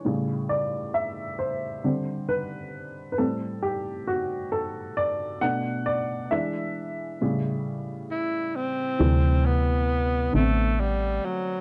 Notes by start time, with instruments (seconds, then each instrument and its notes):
Already playing: upright piano C#5
0.05 upright piano A2 C#3 G3
0.49 upright piano D5
0.94 upright piano E5
1.39 upright piano C5
1.84 upright piano D3 G3 C4
2.29 upright piano B4
3.12 upright piano B4
3.18 upright piano A2 G3 C4 A4
3.63 upright piano G4
4.07 upright piano F#4
4.52 upright piano A4
4.97 upright piano D5
5.41 upright piano B2 A3 D4 F#5
5.86 upright piano D5
6.31 upright piano E3 G#3 D4 E5
7.21 upright piano A2 C#3 G3
8.11 tenor saxophone E4
8.56 tenor saxophone C4
8.99 fm bass D2, upright piano C3 E3 G3 A3
9.46 tenor saxophone B3
10.33 fm bass A1, upright piano D3 A3 B3, tenor saxophone A3
10.38 upright piano C4
10.80 tenor saxophone G3
11.25 tenor saxophone F#3